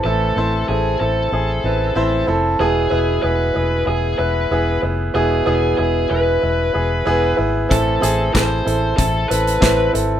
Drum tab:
HH |----------------|----------------|----------------|x-x-x-x-x-xxx-x-|
CP |----------------|----------------|----------------|----x-------x---|
SD |----------------|----------------|----------------|----o-------o---|
BD |----------------|----------------|----------------|o---o---o---o---|